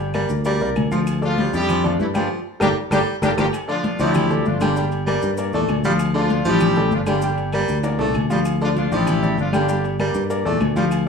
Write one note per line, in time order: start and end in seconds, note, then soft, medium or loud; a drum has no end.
0.00 0.24 G1 medium
0.14 0.31 G3 medium
0.14 0.40 A#3 medium
0.14 0.40 A#4 medium
0.14 0.40 D5 medium
0.14 high conga medium
0.14 low agogo loud
0.14 claves medium
0.14 maracas soft
0.29 0.58 D2 medium
0.29 high conga soft
0.29 maracas medium
0.45 0.70 G3 loud
0.45 0.58 A#3 medium
0.45 0.58 A#4 medium
0.45 0.58 D5 medium
0.45 high conga soft
0.45 low agogo medium
0.45 maracas medium
0.60 0.75 C2 medium
0.60 0.86 A#3 medium
0.60 0.86 A#4 medium
0.60 0.86 D5 medium
0.60 high conga soft
0.60 maracas soft
0.76 1.48 D2 loud
0.76 high conga medium
0.76 low agogo loud
0.76 claves medium
0.76 maracas soft
0.92 1.17 F3 medium
0.92 1.00 F3 medium
0.92 1.17 F4 medium
0.92 1.17 F5 medium
0.92 high conga medium
0.92 maracas medium
1.07 high conga soft
1.07 low agogo loud
1.07 claves medium
1.07 maracas medium
1.21 1.52 F3 loud
1.21 1.47 A3 medium
1.21 1.52 D4 medium
1.21 1.52 F4 loud
1.21 1.47 A4 medium
1.21 1.47 D5 medium
1.21 high conga soft
1.21 maracas soft
1.38 1.55 G3 medium
1.38 high conga loud
1.38 low agogo medium
1.38 maracas soft
1.54 1.96 F2 loud
1.54 1.79 F3 medium
1.54 1.82 G3 loud
1.54 1.79 D4 medium
1.54 1.83 E4 medium
1.54 1.82 G4 loud
1.54 1.79 D5 medium
1.54 high conga soft
1.54 maracas medium
1.69 1.94 F3 loud
1.69 high conga soft
1.69 low conga medium
1.69 low agogo loud
1.69 claves medium
1.69 maracas medium
1.84 2.00 F3 medium
1.84 2.09 A3 medium
1.84 2.00 D4 medium
1.84 2.00 F4 loud
1.84 2.09 A4 medium
1.84 2.09 D5 medium
1.84 high conga soft
1.84 low conga medium
1.84 low agogo medium
1.84 maracas soft
2.00 2.28 G2 loud
2.00 2.06 E3 medium
2.00 2.07 A3 medium
2.00 2.06 E4 loud
2.00 high conga medium
2.00 maracas soft
2.14 2.30 D3 medium
2.14 2.40 F3 medium
2.14 2.27 G3 medium
2.14 2.29 A#3 medium
2.14 2.30 D4 medium
2.14 2.27 G4 medium
2.14 2.27 G5 loud
2.14 high conga medium
2.14 low agogo loud
2.14 claves medium
2.14 maracas medium
2.60 2.72 G1 medium
2.60 2.78 G3 medium
2.60 2.69 G3 medium
2.60 2.69 A#3 loud
2.60 2.69 D4 loud
2.60 2.70 G4 loud
2.60 2.69 G4 loud
2.60 2.70 A4 loud
2.60 2.70 A#4 loud
2.60 high conga loud
2.60 high timbale loud
2.60 claves loud
2.60 maracas loud
2.91 3.03 G1 loud
2.91 3.16 G3 medium
2.91 3.00 G3 medium
2.91 3.00 A#3 medium
2.91 3.00 D4 loud
2.91 3.01 G4 loud
2.91 3.00 G4 loud
2.91 3.01 A4 loud
2.91 3.01 A#4 loud
2.91 high conga loud
2.91 high timbale loud
2.91 claves loud
2.91 maracas loud
3.22 3.33 G1 loud
3.22 3.31 G3 medium
3.22 3.31 A#3 loud
3.22 3.31 D4 medium
3.22 3.32 G4 medium
3.22 3.31 G4 medium
3.22 3.32 A4 loud
3.22 3.32 A#4 medium
3.22 high conga loud
3.22 high timbale medium
3.22 claves loud
3.22 maracas loud
3.37 3.49 G1 medium
3.37 3.46 F3 medium
3.37 3.46 G3 medium
3.37 3.46 A#3 medium
3.37 3.46 D4 loud
3.37 3.47 G4 medium
3.37 3.46 G4 loud
3.37 3.47 A4 medium
3.37 3.48 A#4 loud
3.37 high conga loud
3.37 high timbale loud
3.37 claves loud
3.37 maracas medium
3.53 high conga soft
3.53 low agogo loud
3.53 claves medium
3.53 maracas medium
3.68 3.85 D3 medium
3.68 3.98 F3 medium
3.68 3.93 A3 medium
3.68 3.98 D4 medium
3.68 3.98 F4 loud
3.68 3.93 A4 medium
3.68 3.94 D5 medium
3.68 high conga soft
3.68 maracas soft
3.84 high conga loud
3.84 low agogo medium
3.84 maracas soft
3.99 4.42 D2 medium
3.99 4.25 F3 medium
3.99 4.35 F3 medium
3.99 4.43 G3 loud
3.99 4.25 D4 medium
3.99 4.44 E4 loud
3.99 4.43 G4 loud
3.99 4.25 D5 medium
3.99 high conga soft
3.99 maracas medium
4.14 high conga soft
4.14 low conga medium
4.14 low agogo loud
4.14 claves medium
4.14 maracas medium
4.30 4.55 A3 medium
4.30 4.55 A4 medium
4.30 4.56 D5 medium
4.30 high conga soft
4.30 low conga medium
4.30 low agogo medium
4.30 maracas soft
4.45 5.17 G1 loud
4.45 4.61 F3 medium
4.45 4.61 D4 medium
4.45 4.61 F4 medium
4.45 high conga medium
4.45 maracas soft
4.61 4.85 D3 medium
4.61 4.92 D3 medium
4.61 4.74 G3 medium
4.61 4.92 A#3 medium
4.61 4.92 D4 medium
4.61 4.74 G4 medium
4.61 4.74 G5 medium
4.61 high conga medium
4.61 low agogo loud
4.61 claves medium
4.61 maracas medium
4.76 5.01 G3 medium
4.76 5.02 G4 medium
4.76 5.02 G5 medium
4.76 maracas medium
4.92 high conga soft
4.92 low agogo medium
4.92 maracas soft
5.06 5.31 G3 medium
5.06 5.33 A#3 medium
5.06 5.33 A#4 medium
5.06 5.33 D5 medium
5.06 high conga medium
5.06 low agogo loud
5.06 claves medium
5.06 maracas soft
5.22 5.51 G2 medium
5.22 high conga soft
5.22 maracas medium
5.37 5.50 A#3 medium
5.37 5.51 A#4 medium
5.37 5.51 D5 medium
5.37 high conga soft
5.37 low agogo medium
5.37 maracas medium
5.53 5.67 E2 medium
5.53 5.79 A#2 medium
5.53 5.70 A3 medium
5.53 5.79 A4 medium
5.53 5.79 D5 medium
5.53 high conga soft
5.53 maracas soft
5.68 6.40 D2 loud
5.68 high conga medium
5.68 low agogo loud
5.68 claves medium
5.68 maracas soft
5.84 6.10 F3 loud
5.84 5.93 G3 medium
5.84 6.10 F4 loud
5.84 6.10 F5 loud
5.84 high conga loud
5.84 maracas medium
5.99 high conga soft
5.99 low agogo loud
5.99 claves medium
5.99 maracas medium
6.14 6.30 D3 medium
6.14 6.44 F3 loud
6.14 6.40 A3 medium
6.14 6.44 D4 medium
6.14 6.44 F4 loud
6.14 6.40 A4 medium
6.14 6.40 D5 medium
6.14 high conga soft
6.14 maracas soft
6.30 high conga medium
6.30 low agogo medium
6.30 maracas soft
6.45 6.88 A1 loud
6.45 6.80 F3 medium
6.45 6.71 F3 medium
6.45 6.90 G3 loud
6.45 6.71 D4 medium
6.45 6.89 E4 medium
6.45 6.90 G4 loud
6.45 6.72 D5 medium
6.45 high conga soft
6.45 maracas medium
6.60 high conga soft
6.60 low conga medium
6.60 low agogo loud
6.60 claves medium
6.60 maracas medium
6.75 7.02 A3 medium
6.75 7.02 A4 medium
6.75 7.02 D5 medium
6.75 high conga soft
6.75 low conga medium
6.75 low agogo medium
6.75 maracas soft
6.91 7.63 G1 loud
6.91 7.01 F3 medium
6.91 7.01 D4 medium
6.91 7.01 F4 medium
6.91 high conga medium
6.91 low timbale medium
6.91 maracas soft
7.06 7.31 D3 medium
7.06 7.37 D3 medium
7.06 7.20 G3 medium
7.06 7.37 A#3 medium
7.06 7.37 D4 medium
7.06 7.20 G4 medium
7.06 7.20 G5 loud
7.06 high conga medium
7.06 low agogo loud
7.06 claves medium
7.06 maracas medium
7.22 7.48 G3 medium
7.22 7.48 G4 medium
7.22 7.48 G5 medium
7.22 high conga soft
7.22 maracas medium
7.37 high conga soft
7.37 low agogo medium
7.37 maracas soft
7.52 7.78 G3 medium
7.52 7.79 A#3 medium
7.52 7.79 A#4 medium
7.52 7.79 D5 medium
7.52 high conga medium
7.52 low agogo loud
7.52 claves medium
7.52 maracas soft
7.68 7.97 D2 medium
7.68 high conga soft
7.68 maracas medium
7.83 7.96 A#3 medium
7.83 7.96 A#4 medium
7.83 7.97 D5 medium
7.83 high conga soft
7.83 high timbale medium
7.83 low agogo loud
7.83 maracas medium
7.99 8.13 C2 medium
7.99 8.24 A#2 medium
7.99 8.16 A3 medium
7.99 8.24 A4 medium
7.99 8.24 D5 medium
7.99 high conga soft
7.99 high timbale loud
7.99 maracas soft
8.14 8.86 D2 medium
8.14 high conga medium
8.14 low agogo loud
8.14 claves medium
8.14 maracas soft
8.30 8.55 F3 medium
8.30 8.39 G3 medium
8.30 8.55 F4 medium
8.30 8.55 F5 medium
8.30 high conga medium
8.30 low timbale medium
8.30 maracas medium
8.45 low agogo loud
8.45 claves medium
8.45 maracas medium
8.61 8.77 D3 medium
8.61 8.69 F3 medium
8.61 8.86 A3 medium
8.61 8.70 D4 medium
8.61 8.69 F4 loud
8.61 8.86 A4 medium
8.61 8.87 D5 medium
8.61 high conga soft
8.61 maracas soft
8.77 8.91 F3 medium
8.77 8.91 D4 medium
8.77 8.91 F4 loud
8.77 high conga loud
8.77 low agogo medium
8.77 maracas soft
8.92 9.34 A1 loud
8.92 9.17 F3 medium
8.92 9.28 F3 medium
8.92 9.38 G3 loud
8.92 9.17 D4 medium
8.92 9.39 E4 loud
8.92 9.38 G4 loud
8.92 9.17 D5 medium
8.92 high conga soft
8.92 maracas medium
9.07 high conga soft
9.07 low conga medium
9.07 low agogo loud
9.07 claves medium
9.07 maracas medium
9.22 9.48 A3 medium
9.22 9.48 A4 medium
9.22 9.48 D5 medium
9.22 high conga soft
9.22 low conga medium
9.22 low agogo medium
9.22 maracas soft
9.37 10.09 G1 loud
9.37 9.53 F3 medium
9.37 9.53 D4 medium
9.37 9.53 F4 loud
9.37 high conga medium
9.37 low timbale medium
9.37 maracas soft
9.53 9.78 D3 medium
9.53 9.85 D3 medium
9.53 9.65 G3 medium
9.53 9.85 A#3 medium
9.53 9.85 D4 medium
9.53 9.66 G4 loud
9.53 9.66 G5 medium
9.53 high conga medium
9.53 low agogo loud
9.53 claves medium
9.53 maracas medium
9.69 9.94 G3 medium
9.69 9.94 G4 medium
9.69 9.94 G5 medium
9.69 high conga soft
9.69 maracas medium
9.84 high conga soft
9.84 low agogo medium
9.84 maracas soft
9.99 10.24 G3 medium
9.99 10.25 A#3 medium
9.99 10.25 A#4 medium
9.99 10.25 D5 medium
9.99 high conga medium
9.99 low agogo loud
9.99 claves medium
9.99 maracas soft
10.14 10.43 G2 loud
10.14 high conga soft
10.14 maracas medium
10.30 10.42 A#3 medium
10.30 10.43 A#4 medium
10.30 10.43 D5 medium
10.30 high conga soft
10.30 low agogo medium
10.30 maracas medium
10.45 10.59 E2 medium
10.45 10.70 A#2 medium
10.45 10.62 A3 medium
10.45 10.70 A4 medium
10.45 10.71 D5 medium
10.45 high conga soft
10.45 maracas soft
10.61 11.08 D2 loud
10.61 high conga medium
10.61 low timbale medium
10.61 low agogo loud
10.61 claves medium
10.61 maracas soft
10.76 11.01 F3 loud
10.76 10.85 G3 medium
10.76 11.01 F4 loud
10.76 11.01 F5 medium
10.76 high conga medium
10.76 maracas medium
10.91 high conga soft
10.91 low agogo loud
10.91 claves medium
10.91 maracas medium